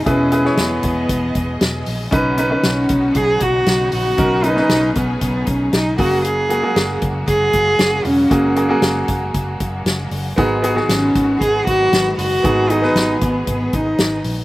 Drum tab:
HH |x-x-x-x-x-x-x-o-|x-x-x-x-x-x-x-o-|x-x-x-x-x-x-x-o-|x-x-x-x-x-x-x-o-|
SD |---oo-------o---|----o-------o---|---oo-------o---|----o-------o---|
BD |o-----o-o-o-----|o-----o-o-o-----|o-----o-o-o---o-|------o-o-o-----|

HH |x-x-x-x-x-x-x-o-|x-x-x-x-x-x-x-o-|x-x-x-x-x-x-x-o-|
SD |----o-------o---|---oo-------o---|---oo-------o---|
BD |o-----o-o-o-----|o-----o-o-o-----|o-----o-o-o-----|